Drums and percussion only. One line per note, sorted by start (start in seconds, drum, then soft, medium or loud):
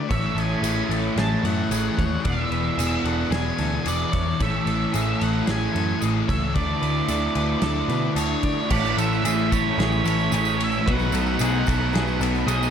0.10 kick loud
0.10 crash medium
0.38 crash medium
0.64 tambourine medium
0.64 crash medium
0.91 crash medium
1.17 snare loud
1.17 crash medium
1.45 crash medium
1.71 tambourine medium
1.71 crash medium
1.99 kick medium
1.99 snare soft
1.99 crash medium
2.25 kick loud
2.25 crash medium
2.52 crash medium
2.79 tambourine loud
2.79 crash medium
3.05 crash medium
3.32 snare loud
3.32 crash medium
3.58 crash medium
3.86 tambourine loud
3.86 crash medium
4.13 kick medium
4.13 snare soft
4.13 crash medium
4.40 kick loud
4.40 crash medium
4.67 crash medium
4.94 tambourine loud
4.94 crash medium
5.21 crash medium
5.47 snare loud
5.47 crash medium
5.76 crash medium
6.02 tambourine loud
6.02 crash medium
6.29 kick medium
6.29 crash medium
6.55 kick loud
6.55 crash medium
6.83 crash medium
7.08 tambourine medium
7.08 crash medium
7.35 crash medium
7.62 snare loud
7.62 crash medium
7.89 crash medium
8.16 tambourine medium
8.16 crash medium
8.43 kick medium
8.43 crash medium
8.70 kick loud
8.70 crash loud
8.86 tambourine soft
8.98 ride medium
8.98 tambourine medium
9.13 tambourine soft
9.25 ride loud
9.25 tambourine loud
9.52 kick medium
9.52 ride medium
9.52 tambourine medium
9.79 snare loud
9.79 ride medium
9.79 tambourine soft
9.92 tambourine soft
10.05 ride medium
10.05 tambourine medium
10.19 tambourine soft
10.32 ride loud
10.32 tambourine medium
10.45 tambourine medium
10.61 ride medium
10.71 tambourine soft
10.88 kick loud
10.88 ride loud
10.99 tambourine soft
11.12 ride medium
11.12 tambourine medium
11.27 tambourine soft
11.39 ride loud
11.39 tambourine loud
11.66 kick medium
11.66 ride medium
11.66 tambourine medium
11.93 snare loud
11.93 ride loud
11.93 tambourine soft
12.07 tambourine soft
12.21 ride medium
12.21 tambourine medium
12.35 tambourine soft
12.48 ride loud
12.48 tambourine medium
12.63 tambourine medium